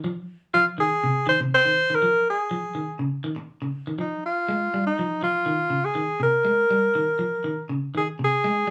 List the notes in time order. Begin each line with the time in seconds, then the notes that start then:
0.04 F3
0.54 F3 F4
0.78 D#3 G#4
1.04 C3
1.27 D#3 C5
1.40 C3
1.54 C5
1.65 D#3
1.90 D#3
1.95 A#4
2.02 F3
2.30 G#4
2.51 F3
2.75 D#3
2.99 C#3
3.24 D#3
3.36 muted clean electric guitar stroke
3.62 C#3
3.87 D#3
3.99 F3 D#4
4.26 F4
4.49 G#3
4.74 G3
4.86 D#4
4.99 F3
5.23 F3 F4
5.46 D#3
5.70 C#3
5.85 G#4
5.95 D#3
6.20 C3 A#4
6.45 G#3
6.71 G3
6.95 D#3
7.19 F3
7.44 D#3
7.69 C#3
7.95 D#3 G#4
8.19 C3
8.24 G#4
8.44 G#3